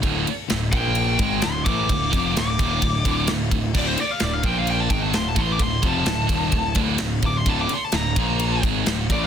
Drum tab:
CC |--------|--------|x-------|--------|
RD |xxxxxxxx|xxxxxxxx|-xxxxxxx|xxxxxxxx|
SD |--o---o-|--o---o-|--o---o-|--o---o-|
BD |o--o-o-o|oo-ooo-o|o--o-o-o|oo-ooo-o|

CC |--------|
RD |xxxxxxxx|
SD |--o---o-|
BD |o--o-o-o|